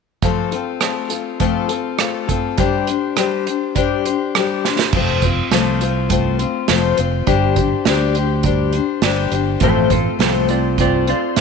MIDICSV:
0, 0, Header, 1, 5, 480
1, 0, Start_track
1, 0, Key_signature, -1, "major"
1, 0, Tempo, 586510
1, 190, Time_signature, 4, 2, 24, 8
1, 9335, End_track
2, 0, Start_track
2, 0, Title_t, "Electric slide guitar"
2, 0, Program_c, 0, 29
2, 7885, Note_on_c, 0, 69, 64
2, 8109, Note_off_c, 0, 69, 0
2, 8119, Note_on_c, 0, 69, 57
2, 8339, Note_off_c, 0, 69, 0
2, 8355, Note_on_c, 0, 69, 69
2, 8577, Note_off_c, 0, 69, 0
2, 8597, Note_on_c, 0, 74, 73
2, 8826, Note_off_c, 0, 74, 0
2, 8845, Note_on_c, 0, 74, 93
2, 9070, Note_off_c, 0, 74, 0
2, 9084, Note_on_c, 0, 74, 76
2, 9311, Note_off_c, 0, 74, 0
2, 9335, End_track
3, 0, Start_track
3, 0, Title_t, "Steel-string acoustic guitar"
3, 0, Program_c, 1, 25
3, 186, Note_on_c, 1, 53, 79
3, 190, Note_on_c, 1, 57, 76
3, 195, Note_on_c, 1, 60, 87
3, 197, Note_on_c, 1, 65, 75
3, 205, Note_on_c, 1, 69, 87
3, 408, Note_off_c, 1, 69, 0
3, 418, Note_on_c, 1, 69, 49
3, 422, Note_off_c, 1, 65, 0
3, 429, Note_off_c, 1, 53, 0
3, 431, Note_off_c, 1, 57, 0
3, 432, Note_on_c, 1, 65, 47
3, 433, Note_off_c, 1, 60, 0
3, 448, Note_on_c, 1, 60, 42
3, 651, Note_off_c, 1, 60, 0
3, 655, Note_on_c, 1, 57, 53
3, 661, Note_on_c, 1, 60, 50
3, 664, Note_off_c, 1, 65, 0
3, 666, Note_off_c, 1, 69, 0
3, 674, Note_on_c, 1, 65, 53
3, 684, Note_on_c, 1, 69, 58
3, 879, Note_off_c, 1, 69, 0
3, 889, Note_on_c, 1, 69, 47
3, 898, Note_off_c, 1, 65, 0
3, 905, Note_off_c, 1, 57, 0
3, 905, Note_off_c, 1, 60, 0
3, 908, Note_on_c, 1, 65, 41
3, 915, Note_on_c, 1, 60, 41
3, 1142, Note_off_c, 1, 69, 0
3, 1143, Note_off_c, 1, 60, 0
3, 1143, Note_on_c, 1, 53, 77
3, 1146, Note_off_c, 1, 65, 0
3, 1149, Note_on_c, 1, 57, 79
3, 1153, Note_on_c, 1, 60, 73
3, 1156, Note_on_c, 1, 65, 85
3, 1161, Note_on_c, 1, 69, 79
3, 1369, Note_off_c, 1, 69, 0
3, 1379, Note_on_c, 1, 69, 49
3, 1381, Note_off_c, 1, 65, 0
3, 1390, Note_off_c, 1, 53, 0
3, 1391, Note_on_c, 1, 65, 48
3, 1392, Note_off_c, 1, 57, 0
3, 1394, Note_off_c, 1, 60, 0
3, 1406, Note_on_c, 1, 60, 39
3, 1620, Note_off_c, 1, 60, 0
3, 1620, Note_on_c, 1, 57, 60
3, 1627, Note_off_c, 1, 65, 0
3, 1628, Note_off_c, 1, 69, 0
3, 1630, Note_on_c, 1, 60, 53
3, 1637, Note_on_c, 1, 65, 62
3, 1645, Note_on_c, 1, 69, 61
3, 1851, Note_off_c, 1, 69, 0
3, 1861, Note_on_c, 1, 69, 55
3, 1869, Note_off_c, 1, 57, 0
3, 1870, Note_off_c, 1, 65, 0
3, 1874, Note_off_c, 1, 60, 0
3, 1879, Note_on_c, 1, 65, 47
3, 1889, Note_on_c, 1, 60, 44
3, 2108, Note_on_c, 1, 55, 77
3, 2110, Note_off_c, 1, 69, 0
3, 2114, Note_off_c, 1, 60, 0
3, 2117, Note_on_c, 1, 62, 82
3, 2118, Note_off_c, 1, 65, 0
3, 2121, Note_on_c, 1, 67, 88
3, 2122, Note_on_c, 1, 72, 90
3, 2336, Note_off_c, 1, 72, 0
3, 2346, Note_on_c, 1, 72, 46
3, 2353, Note_off_c, 1, 55, 0
3, 2356, Note_off_c, 1, 67, 0
3, 2358, Note_off_c, 1, 62, 0
3, 2365, Note_on_c, 1, 67, 41
3, 2375, Note_on_c, 1, 62, 43
3, 2584, Note_on_c, 1, 55, 61
3, 2587, Note_off_c, 1, 62, 0
3, 2593, Note_off_c, 1, 72, 0
3, 2596, Note_off_c, 1, 67, 0
3, 2597, Note_on_c, 1, 62, 58
3, 2606, Note_on_c, 1, 67, 57
3, 2612, Note_on_c, 1, 72, 64
3, 2823, Note_off_c, 1, 72, 0
3, 2832, Note_off_c, 1, 55, 0
3, 2833, Note_on_c, 1, 72, 46
3, 2838, Note_off_c, 1, 62, 0
3, 2839, Note_off_c, 1, 67, 0
3, 2849, Note_on_c, 1, 67, 51
3, 2862, Note_on_c, 1, 62, 42
3, 3068, Note_off_c, 1, 62, 0
3, 3068, Note_on_c, 1, 55, 76
3, 3075, Note_off_c, 1, 67, 0
3, 3076, Note_off_c, 1, 72, 0
3, 3078, Note_on_c, 1, 62, 92
3, 3085, Note_on_c, 1, 67, 79
3, 3090, Note_on_c, 1, 72, 87
3, 3308, Note_off_c, 1, 72, 0
3, 3314, Note_off_c, 1, 55, 0
3, 3318, Note_on_c, 1, 72, 53
3, 3319, Note_off_c, 1, 62, 0
3, 3320, Note_off_c, 1, 67, 0
3, 3330, Note_on_c, 1, 67, 47
3, 3347, Note_on_c, 1, 62, 43
3, 3559, Note_off_c, 1, 72, 0
3, 3563, Note_on_c, 1, 55, 52
3, 3565, Note_off_c, 1, 67, 0
3, 3567, Note_off_c, 1, 62, 0
3, 3577, Note_on_c, 1, 62, 62
3, 3586, Note_on_c, 1, 67, 68
3, 3588, Note_on_c, 1, 72, 67
3, 3797, Note_off_c, 1, 72, 0
3, 3801, Note_off_c, 1, 55, 0
3, 3806, Note_on_c, 1, 72, 50
3, 3808, Note_off_c, 1, 62, 0
3, 3809, Note_off_c, 1, 67, 0
3, 3819, Note_on_c, 1, 67, 46
3, 3830, Note_on_c, 1, 62, 37
3, 4042, Note_on_c, 1, 53, 82
3, 4043, Note_off_c, 1, 72, 0
3, 4047, Note_off_c, 1, 62, 0
3, 4049, Note_off_c, 1, 67, 0
3, 4050, Note_on_c, 1, 57, 75
3, 4050, Note_on_c, 1, 60, 78
3, 4058, Note_on_c, 1, 65, 85
3, 4064, Note_on_c, 1, 72, 91
3, 4272, Note_off_c, 1, 72, 0
3, 4281, Note_off_c, 1, 53, 0
3, 4281, Note_on_c, 1, 72, 53
3, 4284, Note_off_c, 1, 65, 0
3, 4285, Note_off_c, 1, 57, 0
3, 4285, Note_off_c, 1, 60, 0
3, 4294, Note_on_c, 1, 65, 50
3, 4309, Note_on_c, 1, 60, 40
3, 4516, Note_off_c, 1, 60, 0
3, 4516, Note_on_c, 1, 53, 78
3, 4517, Note_off_c, 1, 65, 0
3, 4519, Note_on_c, 1, 57, 87
3, 4520, Note_off_c, 1, 72, 0
3, 4526, Note_on_c, 1, 60, 79
3, 4527, Note_on_c, 1, 65, 84
3, 4532, Note_on_c, 1, 72, 86
3, 4739, Note_off_c, 1, 72, 0
3, 4748, Note_on_c, 1, 72, 54
3, 4751, Note_off_c, 1, 65, 0
3, 4757, Note_off_c, 1, 53, 0
3, 4759, Note_off_c, 1, 57, 0
3, 4761, Note_on_c, 1, 65, 54
3, 4762, Note_off_c, 1, 60, 0
3, 4772, Note_on_c, 1, 60, 45
3, 4984, Note_off_c, 1, 60, 0
3, 4984, Note_on_c, 1, 57, 66
3, 4993, Note_on_c, 1, 60, 58
3, 4994, Note_off_c, 1, 72, 0
3, 4995, Note_off_c, 1, 65, 0
3, 5005, Note_on_c, 1, 65, 67
3, 5015, Note_on_c, 1, 72, 75
3, 5216, Note_off_c, 1, 72, 0
3, 5226, Note_on_c, 1, 72, 52
3, 5231, Note_off_c, 1, 57, 0
3, 5233, Note_off_c, 1, 65, 0
3, 5236, Note_off_c, 1, 60, 0
3, 5243, Note_on_c, 1, 65, 47
3, 5252, Note_on_c, 1, 60, 48
3, 5466, Note_on_c, 1, 53, 73
3, 5470, Note_off_c, 1, 60, 0
3, 5472, Note_off_c, 1, 72, 0
3, 5473, Note_off_c, 1, 65, 0
3, 5475, Note_on_c, 1, 57, 75
3, 5480, Note_on_c, 1, 60, 70
3, 5483, Note_on_c, 1, 65, 91
3, 5492, Note_on_c, 1, 72, 87
3, 5692, Note_off_c, 1, 72, 0
3, 5702, Note_on_c, 1, 72, 50
3, 5709, Note_off_c, 1, 65, 0
3, 5711, Note_off_c, 1, 53, 0
3, 5716, Note_off_c, 1, 57, 0
3, 5718, Note_off_c, 1, 60, 0
3, 5718, Note_on_c, 1, 65, 43
3, 5729, Note_on_c, 1, 60, 44
3, 5945, Note_on_c, 1, 55, 70
3, 5948, Note_off_c, 1, 60, 0
3, 5950, Note_off_c, 1, 65, 0
3, 5950, Note_off_c, 1, 72, 0
3, 5952, Note_on_c, 1, 62, 86
3, 5953, Note_on_c, 1, 67, 94
3, 5961, Note_on_c, 1, 72, 85
3, 6174, Note_off_c, 1, 72, 0
3, 6184, Note_on_c, 1, 72, 52
3, 6188, Note_off_c, 1, 67, 0
3, 6190, Note_off_c, 1, 55, 0
3, 6194, Note_off_c, 1, 62, 0
3, 6198, Note_on_c, 1, 67, 46
3, 6211, Note_on_c, 1, 62, 49
3, 6430, Note_off_c, 1, 72, 0
3, 6433, Note_off_c, 1, 62, 0
3, 6435, Note_on_c, 1, 55, 72
3, 6437, Note_off_c, 1, 67, 0
3, 6442, Note_on_c, 1, 62, 81
3, 6445, Note_on_c, 1, 67, 91
3, 6455, Note_on_c, 1, 72, 83
3, 6655, Note_off_c, 1, 72, 0
3, 6665, Note_on_c, 1, 72, 51
3, 6670, Note_off_c, 1, 67, 0
3, 6675, Note_off_c, 1, 55, 0
3, 6679, Note_off_c, 1, 62, 0
3, 6680, Note_on_c, 1, 67, 47
3, 6690, Note_on_c, 1, 62, 44
3, 6908, Note_on_c, 1, 55, 61
3, 6910, Note_off_c, 1, 62, 0
3, 6910, Note_off_c, 1, 72, 0
3, 6914, Note_off_c, 1, 67, 0
3, 6920, Note_on_c, 1, 62, 64
3, 6924, Note_on_c, 1, 67, 63
3, 6933, Note_on_c, 1, 72, 63
3, 7138, Note_off_c, 1, 72, 0
3, 7148, Note_on_c, 1, 72, 57
3, 7151, Note_off_c, 1, 55, 0
3, 7153, Note_off_c, 1, 67, 0
3, 7157, Note_off_c, 1, 62, 0
3, 7162, Note_on_c, 1, 67, 47
3, 7173, Note_on_c, 1, 62, 46
3, 7387, Note_on_c, 1, 55, 78
3, 7388, Note_off_c, 1, 62, 0
3, 7389, Note_off_c, 1, 67, 0
3, 7391, Note_off_c, 1, 72, 0
3, 7398, Note_on_c, 1, 62, 86
3, 7398, Note_on_c, 1, 67, 86
3, 7409, Note_on_c, 1, 72, 92
3, 7616, Note_off_c, 1, 72, 0
3, 7626, Note_on_c, 1, 72, 56
3, 7630, Note_off_c, 1, 55, 0
3, 7633, Note_off_c, 1, 67, 0
3, 7635, Note_off_c, 1, 62, 0
3, 7642, Note_on_c, 1, 67, 52
3, 7649, Note_on_c, 1, 62, 42
3, 7867, Note_on_c, 1, 45, 88
3, 7870, Note_off_c, 1, 72, 0
3, 7870, Note_on_c, 1, 53, 83
3, 7871, Note_off_c, 1, 62, 0
3, 7875, Note_on_c, 1, 60, 89
3, 7878, Note_off_c, 1, 67, 0
3, 7879, Note_on_c, 1, 57, 89
3, 7884, Note_on_c, 1, 65, 90
3, 7884, Note_on_c, 1, 72, 92
3, 8096, Note_off_c, 1, 72, 0
3, 8105, Note_off_c, 1, 65, 0
3, 8106, Note_on_c, 1, 72, 55
3, 8110, Note_off_c, 1, 45, 0
3, 8111, Note_off_c, 1, 53, 0
3, 8114, Note_off_c, 1, 60, 0
3, 8115, Note_on_c, 1, 65, 52
3, 8116, Note_off_c, 1, 57, 0
3, 8125, Note_on_c, 1, 60, 50
3, 8131, Note_on_c, 1, 57, 41
3, 8339, Note_on_c, 1, 45, 74
3, 8340, Note_off_c, 1, 57, 0
3, 8344, Note_off_c, 1, 60, 0
3, 8346, Note_off_c, 1, 65, 0
3, 8348, Note_on_c, 1, 53, 76
3, 8349, Note_off_c, 1, 72, 0
3, 8349, Note_on_c, 1, 57, 82
3, 8354, Note_on_c, 1, 60, 91
3, 8356, Note_on_c, 1, 65, 84
3, 8359, Note_on_c, 1, 72, 77
3, 8565, Note_off_c, 1, 72, 0
3, 8572, Note_off_c, 1, 65, 0
3, 8575, Note_on_c, 1, 72, 50
3, 8582, Note_off_c, 1, 60, 0
3, 8582, Note_on_c, 1, 65, 47
3, 8585, Note_off_c, 1, 45, 0
3, 8589, Note_off_c, 1, 57, 0
3, 8590, Note_off_c, 1, 53, 0
3, 8592, Note_on_c, 1, 60, 49
3, 8599, Note_on_c, 1, 57, 43
3, 8812, Note_off_c, 1, 57, 0
3, 8821, Note_on_c, 1, 57, 57
3, 8824, Note_off_c, 1, 72, 0
3, 8825, Note_off_c, 1, 60, 0
3, 8827, Note_off_c, 1, 65, 0
3, 8835, Note_on_c, 1, 60, 64
3, 8844, Note_on_c, 1, 65, 64
3, 8854, Note_on_c, 1, 72, 66
3, 9057, Note_off_c, 1, 72, 0
3, 9065, Note_off_c, 1, 65, 0
3, 9066, Note_on_c, 1, 72, 59
3, 9067, Note_off_c, 1, 57, 0
3, 9073, Note_off_c, 1, 60, 0
3, 9075, Note_on_c, 1, 65, 52
3, 9089, Note_on_c, 1, 60, 48
3, 9095, Note_on_c, 1, 57, 47
3, 9305, Note_off_c, 1, 57, 0
3, 9305, Note_on_c, 1, 45, 79
3, 9308, Note_off_c, 1, 60, 0
3, 9309, Note_off_c, 1, 72, 0
3, 9310, Note_on_c, 1, 53, 80
3, 9311, Note_off_c, 1, 65, 0
3, 9335, Note_off_c, 1, 45, 0
3, 9335, Note_off_c, 1, 53, 0
3, 9335, End_track
4, 0, Start_track
4, 0, Title_t, "Fingered electric bass"
4, 0, Program_c, 2, 33
4, 4034, Note_on_c, 2, 29, 87
4, 4414, Note_off_c, 2, 29, 0
4, 4510, Note_on_c, 2, 36, 81
4, 5268, Note_off_c, 2, 36, 0
4, 5474, Note_on_c, 2, 29, 79
4, 5664, Note_off_c, 2, 29, 0
4, 5718, Note_on_c, 2, 29, 84
4, 5906, Note_off_c, 2, 29, 0
4, 5946, Note_on_c, 2, 31, 79
4, 6327, Note_off_c, 2, 31, 0
4, 6434, Note_on_c, 2, 38, 83
4, 7189, Note_off_c, 2, 38, 0
4, 7380, Note_on_c, 2, 31, 84
4, 7574, Note_off_c, 2, 31, 0
4, 7623, Note_on_c, 2, 31, 87
4, 7816, Note_off_c, 2, 31, 0
4, 7860, Note_on_c, 2, 33, 85
4, 8243, Note_off_c, 2, 33, 0
4, 8340, Note_on_c, 2, 36, 81
4, 9100, Note_off_c, 2, 36, 0
4, 9306, Note_on_c, 2, 33, 79
4, 9335, Note_off_c, 2, 33, 0
4, 9335, End_track
5, 0, Start_track
5, 0, Title_t, "Drums"
5, 182, Note_on_c, 9, 42, 72
5, 183, Note_on_c, 9, 36, 99
5, 263, Note_off_c, 9, 42, 0
5, 265, Note_off_c, 9, 36, 0
5, 425, Note_on_c, 9, 42, 50
5, 507, Note_off_c, 9, 42, 0
5, 660, Note_on_c, 9, 42, 66
5, 661, Note_on_c, 9, 37, 88
5, 741, Note_off_c, 9, 42, 0
5, 743, Note_off_c, 9, 37, 0
5, 899, Note_on_c, 9, 42, 62
5, 981, Note_off_c, 9, 42, 0
5, 1145, Note_on_c, 9, 42, 69
5, 1147, Note_on_c, 9, 36, 69
5, 1227, Note_off_c, 9, 42, 0
5, 1229, Note_off_c, 9, 36, 0
5, 1383, Note_on_c, 9, 42, 50
5, 1465, Note_off_c, 9, 42, 0
5, 1624, Note_on_c, 9, 42, 76
5, 1626, Note_on_c, 9, 37, 92
5, 1706, Note_off_c, 9, 42, 0
5, 1708, Note_off_c, 9, 37, 0
5, 1872, Note_on_c, 9, 36, 65
5, 1874, Note_on_c, 9, 42, 55
5, 1954, Note_off_c, 9, 36, 0
5, 1956, Note_off_c, 9, 42, 0
5, 2108, Note_on_c, 9, 42, 73
5, 2113, Note_on_c, 9, 36, 99
5, 2190, Note_off_c, 9, 42, 0
5, 2195, Note_off_c, 9, 36, 0
5, 2352, Note_on_c, 9, 42, 57
5, 2433, Note_off_c, 9, 42, 0
5, 2591, Note_on_c, 9, 42, 73
5, 2592, Note_on_c, 9, 37, 87
5, 2672, Note_off_c, 9, 42, 0
5, 2674, Note_off_c, 9, 37, 0
5, 2838, Note_on_c, 9, 42, 49
5, 2920, Note_off_c, 9, 42, 0
5, 3075, Note_on_c, 9, 36, 73
5, 3075, Note_on_c, 9, 42, 68
5, 3156, Note_off_c, 9, 36, 0
5, 3157, Note_off_c, 9, 42, 0
5, 3318, Note_on_c, 9, 42, 51
5, 3400, Note_off_c, 9, 42, 0
5, 3559, Note_on_c, 9, 42, 65
5, 3561, Note_on_c, 9, 37, 102
5, 3641, Note_off_c, 9, 42, 0
5, 3643, Note_off_c, 9, 37, 0
5, 3805, Note_on_c, 9, 38, 44
5, 3887, Note_off_c, 9, 38, 0
5, 3921, Note_on_c, 9, 38, 65
5, 4003, Note_off_c, 9, 38, 0
5, 4032, Note_on_c, 9, 49, 86
5, 4034, Note_on_c, 9, 36, 107
5, 4114, Note_off_c, 9, 49, 0
5, 4116, Note_off_c, 9, 36, 0
5, 4272, Note_on_c, 9, 42, 58
5, 4274, Note_on_c, 9, 36, 75
5, 4354, Note_off_c, 9, 42, 0
5, 4356, Note_off_c, 9, 36, 0
5, 4513, Note_on_c, 9, 42, 73
5, 4515, Note_on_c, 9, 38, 93
5, 4595, Note_off_c, 9, 42, 0
5, 4597, Note_off_c, 9, 38, 0
5, 4754, Note_on_c, 9, 42, 62
5, 4836, Note_off_c, 9, 42, 0
5, 4992, Note_on_c, 9, 42, 80
5, 4994, Note_on_c, 9, 36, 76
5, 5074, Note_off_c, 9, 42, 0
5, 5076, Note_off_c, 9, 36, 0
5, 5232, Note_on_c, 9, 42, 55
5, 5313, Note_off_c, 9, 42, 0
5, 5466, Note_on_c, 9, 42, 75
5, 5467, Note_on_c, 9, 38, 92
5, 5548, Note_off_c, 9, 42, 0
5, 5549, Note_off_c, 9, 38, 0
5, 5708, Note_on_c, 9, 42, 60
5, 5790, Note_off_c, 9, 42, 0
5, 5949, Note_on_c, 9, 42, 81
5, 5951, Note_on_c, 9, 36, 101
5, 6031, Note_off_c, 9, 42, 0
5, 6033, Note_off_c, 9, 36, 0
5, 6188, Note_on_c, 9, 42, 55
5, 6191, Note_on_c, 9, 36, 69
5, 6270, Note_off_c, 9, 42, 0
5, 6273, Note_off_c, 9, 36, 0
5, 6427, Note_on_c, 9, 42, 76
5, 6429, Note_on_c, 9, 38, 97
5, 6509, Note_off_c, 9, 42, 0
5, 6510, Note_off_c, 9, 38, 0
5, 6668, Note_on_c, 9, 42, 57
5, 6750, Note_off_c, 9, 42, 0
5, 6901, Note_on_c, 9, 42, 73
5, 6906, Note_on_c, 9, 36, 74
5, 6983, Note_off_c, 9, 42, 0
5, 6988, Note_off_c, 9, 36, 0
5, 7141, Note_on_c, 9, 42, 52
5, 7223, Note_off_c, 9, 42, 0
5, 7381, Note_on_c, 9, 42, 71
5, 7382, Note_on_c, 9, 38, 98
5, 7462, Note_off_c, 9, 42, 0
5, 7464, Note_off_c, 9, 38, 0
5, 7623, Note_on_c, 9, 42, 60
5, 7705, Note_off_c, 9, 42, 0
5, 7858, Note_on_c, 9, 42, 76
5, 7865, Note_on_c, 9, 36, 114
5, 7939, Note_off_c, 9, 42, 0
5, 7946, Note_off_c, 9, 36, 0
5, 8103, Note_on_c, 9, 42, 60
5, 8105, Note_on_c, 9, 36, 70
5, 8185, Note_off_c, 9, 42, 0
5, 8187, Note_off_c, 9, 36, 0
5, 8349, Note_on_c, 9, 42, 78
5, 8350, Note_on_c, 9, 38, 100
5, 8431, Note_off_c, 9, 42, 0
5, 8432, Note_off_c, 9, 38, 0
5, 8581, Note_on_c, 9, 42, 57
5, 8663, Note_off_c, 9, 42, 0
5, 8822, Note_on_c, 9, 42, 74
5, 8824, Note_on_c, 9, 36, 77
5, 8904, Note_off_c, 9, 42, 0
5, 8905, Note_off_c, 9, 36, 0
5, 9063, Note_on_c, 9, 42, 54
5, 9144, Note_off_c, 9, 42, 0
5, 9300, Note_on_c, 9, 42, 85
5, 9302, Note_on_c, 9, 38, 96
5, 9335, Note_off_c, 9, 38, 0
5, 9335, Note_off_c, 9, 42, 0
5, 9335, End_track
0, 0, End_of_file